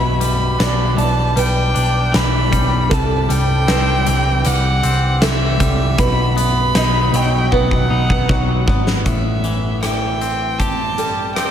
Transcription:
0.00 0.56 B1 medium
0.00 1.75 B2 medium
0.00 0.62 E3 medium
0.00 0.60 B4 medium
0.00 0.22 B5 medium
0.20 1.35 G3 medium
0.20 0.96 B5 medium
0.20 closed hi-hat medium
0.59 0.96 B1 medium
0.59 1.73 D4 medium
0.59 0.95 D5 medium
0.59 snare medium
0.59 closed hi-hat medium
0.97 1.34 B1 medium
0.97 2.11 E3 medium
0.97 1.36 D5 medium
0.97 1.40 A5 medium
0.97 closed hi-hat medium
1.36 1.72 B1 medium
1.36 2.51 G3 medium
1.36 2.13 B4 medium
1.36 2.17 G5 medium
1.36 closed hi-hat medium
1.74 2.11 B1 medium
1.74 2.90 D4 medium
1.74 closed hi-hat soft
2.12 2.50 B1 medium
2.12 2.90 E3 medium
2.12 2.94 B5 medium
2.12 snare loud
2.12 closed hi-hat medium
2.52 2.88 B1 medium
2.52 2.91 G3 medium
2.52 kick medium
2.52 closed hi-hat medium
2.89 3.27 C2 medium
2.89 4.83 C3 medium
2.89 3.67 A4 medium
2.89 3.33 A5 medium
2.89 kick medium
2.89 closed hi-hat medium
3.29 3.65 C2 medium
3.29 4.44 G3 medium
3.29 4.47 G5 medium
3.29 closed hi-hat medium
3.67 4.04 C2 medium
3.67 4.82 C4 medium
3.67 4.44 B4 medium
3.67 snare medium
3.67 closed hi-hat medium
4.07 4.42 C2 medium
4.07 5.20 E3 medium
4.07 closed hi-hat medium
4.45 4.81 C2 loud
4.45 5.59 G3 medium
4.45 5.24 F#5 medium
4.45 closed hi-hat medium
4.83 5.19 C2 medium
4.83 5.99 C4 medium
4.83 closed hi-hat medium
5.21 5.58 C2 medium
5.21 5.98 E3 medium
5.21 5.98 A4 medium
5.21 6.00 E5 medium
5.21 snare loud
5.21 closed hi-hat medium
5.60 5.96 C2 medium
5.60 5.99 G3 medium
5.60 kick medium
5.60 closed hi-hat medium
5.98 6.71 B1 medium
5.98 7.91 B2 medium
5.98 6.75 B4 medium
5.98 6.37 B5 medium
5.98 kick medium
5.98 closed hi-hat medium
6.37 7.51 B3 medium
6.37 7.16 B5 loud
6.37 closed hi-hat medium
6.75 7.11 B1 medium
6.75 7.89 D#4 medium
6.75 7.12 D#5 medium
6.75 snare loud
6.75 closed hi-hat medium
7.12 7.49 B1 medium
7.12 8.28 F#3 medium
7.12 7.52 D#5 medium
7.12 7.53 G5 medium
7.12 closed hi-hat medium
7.52 7.88 B1 loud
7.52 8.66 B3 medium
7.52 8.29 B4 medium
7.52 8.67 F#5 medium
7.52 kick medium
7.71 kick soft
7.90 8.26 B1 medium
7.90 9.06 D#4 medium
8.10 kick medium
8.29 8.65 B1 loud
8.29 9.06 F#3 medium
8.29 kick medium
8.68 9.04 G#1 medium
8.68 9.06 B3 medium
8.68 kick medium
8.87 snare medium
9.06 11.51 A1 medium
9.06 10.99 A2 soft
9.06 9.79 E5 medium
9.06 kick medium
9.06 closed hi-hat medium
9.44 9.83 E3 medium
9.44 closed hi-hat soft
9.83 11.51 E3 soft
9.83 10.60 E5 soft
9.83 10.60 G5 medium
9.83 cross-stick medium
9.83 closed hi-hat medium
10.21 11.35 C4 soft
10.21 closed hi-hat soft
10.59 11.51 G4 medium
10.59 11.35 A5 medium
10.59 kick medium
10.59 closed hi-hat medium
10.98 11.51 G3 medium
10.98 11.51 A4 soft
10.98 closed hi-hat soft
11.36 11.51 C4 medium
11.36 11.51 G5 medium
11.36 cross-stick medium
11.36 closed hi-hat medium

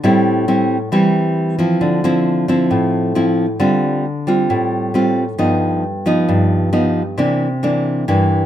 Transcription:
0.03 0.90 A2 medium
0.03 0.44 G3 medium
0.03 0.44 C4 medium
0.03 0.45 E4 medium
0.48 0.76 G3 medium
0.48 0.76 C4 medium
0.48 0.77 E4 medium
0.92 1.79 E3 medium
0.92 1.56 G3 medium
0.92 1.56 C4 medium
0.92 1.56 E4 medium
1.59 2.00 F3 medium
1.59 2.00 C4 medium
1.59 2.00 E4 medium
1.81 2.68 D3 medium
2.04 2.45 F3 medium
2.04 2.45 C4 medium
2.04 2.45 E4 medium
2.48 3.12 F3 medium
2.48 3.12 C4 medium
2.48 3.12 E4 medium
2.71 3.58 A2 medium
3.15 3.45 F3 medium
3.15 3.45 C4 medium
3.15 3.46 E4 medium
3.60 4.47 D3 medium
3.60 4.04 G3 medium
3.60 4.04 C4 medium
3.60 4.05 F4 medium
4.27 4.91 G3 medium
4.27 4.91 C4 medium
4.27 4.91 F4 medium
4.50 5.37 A2 medium
4.94 5.23 G3 soft
4.94 5.23 C4 medium
4.94 5.23 F4 medium
5.38 6.26 G2 medium
5.38 5.83 F3 medium
5.38 5.83 B3 medium
5.38 5.83 D#4 medium
6.06 6.69 F3 medium
6.06 6.69 B3 medium
6.06 6.70 D#4 medium
6.29 7.15 G2 medium
6.73 7.01 F3 medium
6.73 7.01 B3 medium
6.73 7.02 D#4 medium
7.18 8.05 C3 medium
7.18 7.47 E3 soft
7.18 7.47 A#3 medium
7.18 7.47 D4 medium
7.63 8.04 E3 medium
7.63 8.04 A#3 medium
7.63 8.04 D4 medium
8.08 8.46 G2 medium
8.08 8.46 E3 medium
8.08 8.46 A#3 medium
8.08 8.46 D4 medium

